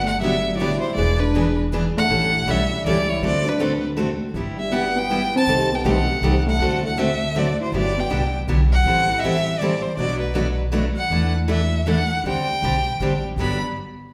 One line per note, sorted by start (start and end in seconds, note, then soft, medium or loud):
0.00 0.74 G1 medium
0.00 0.19 A3 medium
0.07 0.20 F#5 medium
0.19 0.33 D3 medium
0.19 0.33 F#3 medium
0.19 0.52 G3 medium
0.19 0.33 B3 medium
0.19 0.33 D4 medium
0.19 0.33 G4 medium
0.19 0.53 E5 medium
0.56 0.70 D3 medium
0.56 0.81 F#3 medium
0.56 0.70 F#3 medium
0.56 0.59 E4 medium
0.56 0.59 C#5 medium
0.56 0.80 D5 medium
0.60 0.71 B3 medium
0.60 0.71 D4 medium
0.60 0.71 G4 medium
0.78 0.93 E4 medium
0.78 0.95 C5 medium
0.94 1.87 E1 medium
0.94 1.18 E3 medium
0.94 1.17 G#3 medium
0.94 1.18 B3 medium
0.94 1.18 D4 medium
0.94 1.18 G#4 medium
0.94 1.18 B4 medium
0.94 1.22 D5 medium
1.20 1.57 D4 medium
1.20 1.58 B4 medium
1.35 1.46 E3 medium
1.35 1.46 B3 medium
1.35 1.46 D4 medium
1.35 1.46 G#4 medium
1.35 1.46 B4 medium
1.72 1.83 E3 medium
1.72 1.83 B3 medium
1.72 1.83 D4 medium
1.72 1.84 G#4 medium
1.72 1.84 B4 medium
1.97 2.45 A3 medium
1.97 2.52 F#5 loud
2.10 2.40 A1 medium
2.10 2.31 E3 medium
2.10 2.31 G3 medium
2.10 2.31 C#4 medium
2.10 2.31 E4 medium
2.10 2.31 A4 medium
2.46 2.79 B1 medium
2.46 2.59 E3 medium
2.46 2.59 G3 medium
2.46 2.86 G3 medium
2.46 2.59 C#4 medium
2.46 2.59 E4 medium
2.46 2.59 A4 medium
2.51 2.87 E5 loud
2.85 3.17 C#2 medium
2.85 2.96 E3 medium
2.85 2.96 G3 medium
2.85 3.07 G3 medium
2.85 2.96 C#4 medium
2.85 2.97 E4 medium
2.85 2.97 A4 medium
2.85 3.11 D5 medium
3.09 3.23 E4 medium
3.09 3.23 C#5 medium
3.21 4.12 D2 medium
3.21 3.43 D3 medium
3.21 3.44 F#3 medium
3.21 3.44 A3 medium
3.21 3.44 C4 medium
3.21 3.44 F#4 medium
3.21 3.44 A4 medium
3.26 3.50 D5 loud
3.46 3.83 D4 medium
3.46 3.85 B4 medium
3.60 3.71 D3 medium
3.60 3.71 A3 medium
3.60 3.71 C4 medium
3.60 3.71 F#4 medium
3.60 3.72 A4 medium
3.98 4.09 D3 medium
3.98 4.09 A3 medium
3.98 4.09 C4 medium
3.98 4.09 F#4 medium
3.98 4.09 A4 medium
4.34 5.24 G1 medium
4.34 4.55 G3 medium
4.34 4.56 B3 medium
4.34 4.56 E4 medium
4.34 4.56 G4 medium
4.57 4.71 G3 medium
4.57 4.74 E5 medium
4.72 4.84 G3 medium
4.72 4.95 B3 medium
4.72 4.84 B3 medium
4.72 4.84 E4 medium
4.72 4.84 G4 medium
4.72 4.99 F#5 medium
4.96 5.35 B3 medium
4.96 5.36 G5 loud
5.10 5.21 G3 medium
5.10 5.21 B3 medium
5.10 5.21 E4 medium
5.10 5.21 G4 medium
5.36 5.70 C4 medium
5.36 5.77 A5 loud
5.47 5.77 C2 medium
5.47 5.68 C3 medium
5.47 5.68 D#3 medium
5.47 5.68 G3 medium
5.47 5.69 C4 medium
5.47 5.69 G4 medium
5.47 5.69 A4 medium
5.72 5.85 B3 medium
5.72 5.86 G5 medium
5.84 6.16 B1 medium
5.84 5.96 C3 medium
5.84 5.96 D#3 medium
5.84 5.96 G3 medium
5.84 6.42 A3 medium
5.84 5.97 C4 medium
5.84 5.96 G4 medium
5.84 5.96 A4 loud
5.84 6.43 F#5 loud
6.21 6.54 C2 medium
6.21 6.33 C3 medium
6.21 6.34 D#3 medium
6.21 6.34 G3 medium
6.21 6.34 C4 medium
6.21 6.34 G4 medium
6.21 6.34 A4 medium
6.46 6.81 A3 medium
6.46 6.82 F#5 loud
6.59 7.50 D2 medium
6.59 6.81 D3 medium
6.59 6.81 A3 medium
6.59 6.81 C4 medium
6.59 6.81 F#4 medium
6.59 6.81 A4 medium
6.83 6.97 A3 medium
6.83 7.00 F#5 medium
6.96 7.08 D3 medium
6.96 7.08 A3 medium
6.96 7.36 A3 medium
6.96 7.09 C4 medium
6.96 7.09 F#4 medium
6.96 7.09 A4 medium
6.96 7.40 E5 loud
7.35 7.46 D3 medium
7.35 7.60 F#3 medium
7.35 7.46 A3 medium
7.35 7.46 C4 medium
7.35 7.46 F#4 medium
7.35 7.47 A4 medium
7.35 7.60 D5 medium
7.61 7.73 E4 medium
7.61 7.74 C5 medium
7.72 8.02 G1 medium
7.72 7.93 D3 medium
7.72 7.93 F#3 medium
7.72 7.96 F#3 medium
7.72 7.93 B3 medium
7.72 7.93 D4 medium
7.72 7.94 G4 medium
7.76 8.01 D5 medium
7.98 8.34 B3 medium
7.98 8.35 G5 medium
8.09 8.42 C2 medium
8.09 8.21 D3 medium
8.09 8.21 F#3 medium
8.09 8.21 B3 medium
8.09 8.21 D4 medium
8.09 8.22 G4 medium
8.47 8.80 B1 medium
8.47 8.59 D3 medium
8.47 8.59 F#3 medium
8.47 8.59 B3 medium
8.47 8.59 D4 medium
8.47 8.59 G4 medium
8.73 9.19 F#5 loud
8.84 9.75 A1 medium
8.84 9.06 E3 medium
8.84 9.06 G3 medium
8.84 9.06 C4 medium
8.84 9.06 E4 medium
8.84 9.07 A4 medium
9.18 9.21 D#5 medium
9.18 9.60 E5 loud
9.23 9.34 E3 medium
9.23 9.35 G3 medium
9.23 9.35 C4 medium
9.23 9.35 E4 medium
9.23 9.35 A4 medium
9.59 9.72 E3 medium
9.59 9.72 G3 medium
9.59 9.72 C4 medium
9.59 9.72 E4 medium
9.59 9.72 A4 medium
9.59 9.84 D5 medium
9.82 9.97 C5 medium
9.97 10.88 B1 medium
9.97 10.19 B2 medium
9.97 10.19 F#3 medium
9.97 10.19 A3 medium
9.97 10.19 D4 medium
9.97 10.19 F#4 medium
9.97 10.20 B4 medium
9.97 10.20 D5 loud
10.20 10.56 B4 medium
10.35 10.47 B2 medium
10.35 10.47 F#3 medium
10.35 10.47 A3 medium
10.35 10.47 D4 medium
10.35 10.47 F#4 medium
10.35 10.47 B4 medium
10.73 10.84 B2 medium
10.73 10.85 F#3 medium
10.73 10.85 A3 medium
10.73 10.85 D4 medium
10.73 10.85 F#4 medium
10.73 10.85 B4 medium
10.96 11.32 F#5 medium
11.10 12.01 E2 medium
11.10 11.32 E3 medium
11.10 11.32 A3 medium
11.10 11.32 D4 medium
11.10 11.33 E4 medium
11.10 11.33 A4 medium
11.48 11.60 E3 medium
11.48 11.60 A3 medium
11.48 11.60 D4 medium
11.48 11.60 E4 medium
11.48 11.60 A4 medium
11.48 11.85 E5 medium
11.86 11.97 E3 medium
11.86 11.97 A3 medium
11.86 11.98 D4 medium
11.86 11.98 E4 medium
11.86 11.98 A4 medium
11.86 12.23 F#5 loud
12.24 12.54 D2 medium
12.24 12.46 D3 medium
12.24 12.46 G3 medium
12.24 12.46 C4 medium
12.24 12.46 D4 medium
12.24 12.46 G4 medium
12.29 13.21 G5 loud
12.62 12.95 B1 medium
12.62 12.73 D3 medium
12.62 12.74 G3 medium
12.62 12.73 C4 medium
12.62 12.74 D4 medium
12.62 12.74 G4 medium
13.00 13.32 A1 medium
13.00 13.11 D3 medium
13.00 13.11 G3 medium
13.00 13.11 C4 medium
13.00 13.12 D4 medium
13.00 13.12 G4 medium
13.36 13.59 G1 medium
13.36 13.56 G2 medium
13.36 13.56 D3 medium
13.36 13.56 F#3 medium
13.36 13.57 B3 medium
13.36 13.57 D4 medium
13.36 13.57 G4 medium
13.41 13.61 B5 medium